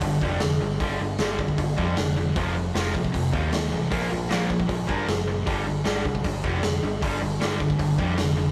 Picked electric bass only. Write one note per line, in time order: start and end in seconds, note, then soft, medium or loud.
0.02 0.19 G1 medium
0.22 0.38 F1 medium
0.43 0.58 F1 medium
0.61 0.77 G1 medium
0.81 0.97 G1 medium
1.00 1.16 G1 medium
1.20 1.53 G1 medium
1.58 1.75 G1 loud
1.78 1.94 F2 medium
1.97 2.30 F1 medium
2.36 2.69 F1 medium
2.75 2.91 F1 medium
2.95 3.11 A#1 medium
3.15 3.31 F1 medium
3.34 3.50 D#2 medium
3.53 3.69 D#2 medium
3.73 3.89 A1 medium
3.92 4.08 A#1 medium
4.12 4.28 A#1 medium
4.31 4.63 A#1 medium
4.69 4.86 A#1 medium
4.89 5.05 G2 medium
5.08 5.41 F#1 medium
5.47 5.80 G1 medium
5.85 6.02 G1 medium
6.05 6.21 C2 medium
6.25 6.41 G1 medium
6.44 6.60 F1 medium
6.63 6.80 F1 medium
6.82 6.99 G1 medium
7.02 7.19 G1 medium
7.21 7.38 G1 medium
7.40 7.73 G1 medium
7.80 7.96 G1 medium
7.98 8.15 F2 medium
8.18 8.51 F1 medium